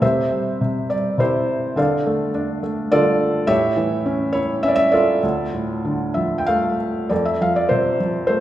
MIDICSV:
0, 0, Header, 1, 2, 480
1, 0, Start_track
1, 0, Key_signature, -1, "minor"
1, 0, Tempo, 579710
1, 15, Time_signature, 3, 2, 24, 8
1, 4334, Tempo, 623701
1, 5774, Tempo, 588235
1, 6832, End_track
2, 0, Start_track
2, 0, Title_t, "Felt piano"
2, 0, Program_c, 0, 0
2, 0, Control_c, 0, 64, 127
2, 13, Note_on_c, 0, 48, 53
2, 15, Note_on_c, 0, 76, 73
2, 19, Note_on_c, 0, 72, 52
2, 20, Note_on_c, 0, 67, 51
2, 26, Control_c, 0, 64, 0
2, 152, Control_c, 0, 64, 127
2, 254, Note_on_c, 0, 55, 38
2, 494, Note_off_c, 0, 48, 0
2, 506, Note_on_c, 0, 48, 43
2, 719, Note_off_c, 0, 72, 0
2, 720, Note_off_c, 0, 67, 0
2, 732, Note_off_c, 0, 55, 0
2, 743, Note_on_c, 0, 74, 62
2, 745, Note_on_c, 0, 55, 39
2, 772, Note_off_c, 0, 76, 0
2, 966, Note_off_c, 0, 48, 0
2, 978, Note_on_c, 0, 48, 50
2, 987, Note_on_c, 0, 64, 47
2, 992, Note_on_c, 0, 67, 52
2, 993, Note_off_c, 0, 74, 0
2, 994, Note_on_c, 0, 72, 73
2, 1432, Note_off_c, 0, 64, 0
2, 1434, Note_off_c, 0, 67, 0
2, 1442, Note_off_c, 0, 55, 0
2, 1446, Note_off_c, 0, 48, 0
2, 1458, Note_on_c, 0, 50, 59
2, 1468, Note_on_c, 0, 77, 66
2, 1469, Note_on_c, 0, 69, 46
2, 1472, Note_on_c, 0, 74, 51
2, 1478, Control_c, 0, 64, 0
2, 1483, Note_off_c, 0, 72, 0
2, 1618, Control_c, 0, 64, 127
2, 1710, Note_on_c, 0, 57, 47
2, 1909, Note_off_c, 0, 77, 0
2, 1942, Note_on_c, 0, 62, 51
2, 2146, Note_off_c, 0, 69, 0
2, 2147, Note_off_c, 0, 74, 0
2, 2165, Note_off_c, 0, 57, 0
2, 2178, Note_on_c, 0, 57, 45
2, 2404, Note_off_c, 0, 50, 0
2, 2414, Note_on_c, 0, 74, 90
2, 2417, Note_on_c, 0, 50, 54
2, 2422, Note_on_c, 0, 65, 63
2, 2422, Note_on_c, 0, 69, 69
2, 2856, Note_off_c, 0, 62, 0
2, 2856, Note_off_c, 0, 65, 0
2, 2856, Note_off_c, 0, 69, 0
2, 2863, Note_off_c, 0, 57, 0
2, 2872, Note_off_c, 0, 50, 0
2, 2875, Note_on_c, 0, 45, 62
2, 2875, Note_on_c, 0, 76, 93
2, 2880, Note_on_c, 0, 67, 70
2, 2884, Note_on_c, 0, 73, 70
2, 2895, Control_c, 0, 64, 0
2, 2899, Note_off_c, 0, 74, 0
2, 3045, Control_c, 0, 64, 127
2, 3117, Note_on_c, 0, 52, 46
2, 3360, Note_on_c, 0, 61, 54
2, 3569, Note_off_c, 0, 67, 0
2, 3569, Note_off_c, 0, 73, 0
2, 3582, Note_on_c, 0, 73, 78
2, 3598, Note_on_c, 0, 64, 50
2, 3622, Note_off_c, 0, 76, 0
2, 3829, Note_off_c, 0, 61, 0
2, 3833, Note_on_c, 0, 76, 88
2, 3842, Note_off_c, 0, 73, 0
2, 3842, Note_on_c, 0, 61, 59
2, 3874, Note_on_c, 0, 74, 74
2, 3898, Note_off_c, 0, 76, 0
2, 3938, Note_on_c, 0, 76, 99
2, 3945, Note_off_c, 0, 74, 0
2, 4056, Note_off_c, 0, 52, 0
2, 4070, Note_on_c, 0, 74, 76
2, 4081, Note_off_c, 0, 76, 0
2, 4084, Note_on_c, 0, 69, 60
2, 4086, Note_on_c, 0, 65, 58
2, 4295, Note_off_c, 0, 45, 0
2, 4308, Note_off_c, 0, 64, 0
2, 4316, Note_off_c, 0, 61, 0
2, 4330, Note_on_c, 0, 38, 55
2, 4343, Control_c, 0, 64, 0
2, 4481, Control_c, 0, 64, 127
2, 4566, Note_on_c, 0, 45, 40
2, 4805, Note_on_c, 0, 50, 49
2, 5032, Note_on_c, 0, 76, 64
2, 5049, Note_on_c, 0, 53, 42
2, 5218, Note_on_c, 0, 79, 55
2, 5232, Note_off_c, 0, 76, 0
2, 5252, Note_off_c, 0, 74, 0
2, 5259, Note_off_c, 0, 69, 0
2, 5260, Note_off_c, 0, 65, 0
2, 5281, Note_on_c, 0, 77, 80
2, 5284, Note_off_c, 0, 79, 0
2, 5296, Note_on_c, 0, 57, 52
2, 5508, Note_off_c, 0, 45, 0
2, 5742, Note_off_c, 0, 38, 0
2, 5747, Note_off_c, 0, 50, 0
2, 5755, Note_off_c, 0, 53, 0
2, 5762, Note_off_c, 0, 57, 0
2, 5765, Note_on_c, 0, 74, 60
2, 5774, Note_on_c, 0, 41, 50
2, 5784, Note_off_c, 0, 77, 0
2, 5784, Note_on_c, 0, 69, 42
2, 5786, Control_c, 0, 64, 0
2, 5884, Note_off_c, 0, 74, 0
2, 5896, Note_on_c, 0, 76, 65
2, 5944, Control_c, 0, 64, 127
2, 6022, Note_off_c, 0, 76, 0
2, 6024, Note_on_c, 0, 53, 38
2, 6028, Note_on_c, 0, 77, 72
2, 6144, Note_on_c, 0, 74, 67
2, 6148, Note_off_c, 0, 77, 0
2, 6250, Note_on_c, 0, 72, 71
2, 6253, Note_off_c, 0, 74, 0
2, 6267, Note_on_c, 0, 48, 40
2, 6469, Note_off_c, 0, 69, 0
2, 6491, Note_off_c, 0, 53, 0
2, 6504, Note_on_c, 0, 53, 42
2, 6697, Note_off_c, 0, 72, 0
2, 6723, Note_on_c, 0, 72, 73
2, 6744, Note_on_c, 0, 57, 49
2, 6832, Note_off_c, 0, 41, 0
2, 6832, Note_off_c, 0, 48, 0
2, 6832, Note_off_c, 0, 53, 0
2, 6832, Note_off_c, 0, 57, 0
2, 6832, Note_off_c, 0, 72, 0
2, 6832, End_track
0, 0, End_of_file